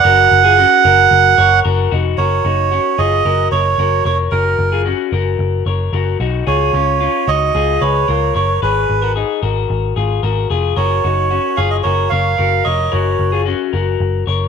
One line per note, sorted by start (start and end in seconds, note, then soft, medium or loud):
0.00 1.60 F#5 loud
0.04 0.26 F#1 loud
0.04 0.42 F#4 medium
0.04 0.42 A#4 loud
0.31 0.64 F#1 medium
0.44 0.58 F4 medium
0.44 0.57 G#4 medium
0.58 0.85 C#4 medium
0.58 0.84 F#4 medium
0.85 1.06 F#1 medium
0.85 1.35 F#4 medium
0.85 1.35 A#4 medium
1.11 1.33 F#1 loud
1.38 1.60 F#1 medium
1.38 1.63 A#4 medium
1.38 1.64 C#5 medium
1.65 1.87 F#1 medium
1.65 1.90 F#4 medium
1.65 1.91 A#4 medium
1.91 2.14 F1 medium
1.91 2.18 D#4 medium
1.91 2.18 F#4 medium
2.18 2.40 F#1 medium
2.18 2.43 F#4 medium
2.18 2.45 A#4 medium
2.18 3.01 C#5 medium
2.45 2.78 F#1 medium
2.45 2.72 D#4 medium
2.45 2.70 F#4 medium
2.71 2.99 C#4 medium
2.71 2.98 F#4 medium
2.98 3.20 F#1 medium
2.98 3.26 F4 medium
2.98 3.25 G#4 medium
2.98 3.48 D#5 loud
3.25 3.47 F#1 medium
3.25 3.52 F#4 medium
3.25 3.52 A#4 medium
3.52 3.74 F#1 medium
3.52 3.78 A#4 soft
3.52 4.04 C#5 medium
3.52 3.79 C#5 medium
3.78 4.00 F#1 medium
3.78 4.06 F#4 medium
3.78 4.05 A#4 medium
4.05 4.27 F1 medium
4.05 4.31 A#4 soft
4.05 4.32 C#5 medium
4.05 4.18 C#5 medium
4.31 4.54 F#1 medium
4.31 4.70 F#4 medium
4.31 4.82 A#4 medium
4.31 4.70 A#4 medium
4.59 4.92 F#1 medium
4.72 4.85 F4 medium
4.72 4.86 G#4 medium
4.86 5.13 C#4 medium
4.86 5.12 F#4 medium
5.12 5.35 F#1 medium
5.12 5.64 F#4 medium
5.12 5.63 A#4 medium
5.39 5.61 F#1 loud
5.66 5.88 F#1 medium
5.66 5.92 A#4 soft
5.66 5.93 C#5 medium
5.93 6.15 F#1 medium
5.93 6.19 F#4 medium
5.93 6.20 A#4 medium
6.20 6.42 B1 medium
6.20 6.47 D#4 medium
6.20 6.46 F#4 medium
6.47 6.69 C#2 medium
6.47 6.73 F4 medium
6.47 6.74 G#4 medium
6.47 7.30 C#5 medium
6.73 7.07 C#2 medium
6.73 7.00 C#4 soft
6.73 6.99 F4 medium
7.00 7.28 C#4 medium
7.00 7.27 F4 medium
7.28 7.50 C#2 medium
7.28 7.55 D#4 medium
7.28 7.54 F#4 medium
7.28 7.83 D#5 loud
7.55 7.77 C#2 medium
7.55 7.82 F4 medium
7.55 7.81 G#4 medium
7.81 8.03 C#2 medium
7.81 8.08 G#4 medium
7.81 8.08 B4 medium
7.81 8.34 C#5 medium
8.08 8.31 C#2 medium
8.08 8.36 F4 medium
8.08 8.34 A#4 medium
8.35 8.57 F#1 medium
8.35 8.62 A#4 medium
8.35 8.62 C#5 medium
8.35 8.61 C#5 medium
8.62 8.84 G#1 loud
8.62 9.00 G#4 medium
8.62 9.00 B4 medium
8.62 9.12 B4 medium
8.89 9.22 G#1 medium
9.02 9.16 F#4 soft
9.02 9.15 A#4 medium
9.16 9.43 D#4 medium
9.16 9.42 G#4 medium
9.42 9.65 G#1 medium
9.42 9.93 F#4 medium
9.42 9.93 A#4 medium
9.70 9.92 G#1 loud
9.96 10.18 G#1 medium
9.96 10.24 F4 soft
9.96 10.23 G#4 medium
10.23 10.45 G#1 medium
10.23 10.50 F#4 medium
10.23 10.50 A#4 medium
10.50 10.72 F1 medium
10.50 10.77 F4 medium
10.50 10.76 G#4 medium
10.76 10.99 F#1 medium
10.76 11.03 F#4 medium
10.76 11.04 A#4 medium
10.76 11.60 C#5 medium
11.04 11.37 F#1 medium
11.04 11.31 D#4 soft
11.04 11.29 F#4 medium
11.31 11.58 C#4 soft
11.31 11.58 F#4 medium
11.57 11.80 F#1 medium
11.57 11.84 F4 medium
11.57 11.83 G#4 medium
11.57 11.70 F5 medium
11.71 11.77 D#5 medium
11.83 12.07 F#1 medium
11.83 12.11 F#4 medium
11.83 12.11 A#4 medium
11.83 12.11 C#5 medium
12.10 12.34 F#1 medium
12.10 12.37 A#4 medium
12.10 12.38 C#5 medium
12.10 12.66 F5 loud
12.38 12.61 F#1 medium
12.38 12.66 F#4 medium
12.38 12.64 A#4 medium
12.64 12.88 F1 medium
12.64 12.90 A#4 medium
12.64 12.92 C#5 medium
12.64 12.92 D#5 medium
12.92 13.15 F#1 medium
12.92 13.30 F#4 medium
12.92 13.30 A#4 medium
12.92 13.42 C#5 medium
13.19 13.52 F#1 medium
13.32 13.45 F4 soft
13.32 13.46 G#4 medium
13.46 13.73 C#4 medium
13.46 13.72 F#4 medium
13.73 13.95 F#1 medium
13.73 14.24 F#4 medium
13.73 14.23 A#4 medium
14.00 14.22 F#1 loud
14.27 14.48 F#1 medium
14.27 14.48 A#4 soft
14.27 14.48 C#5 medium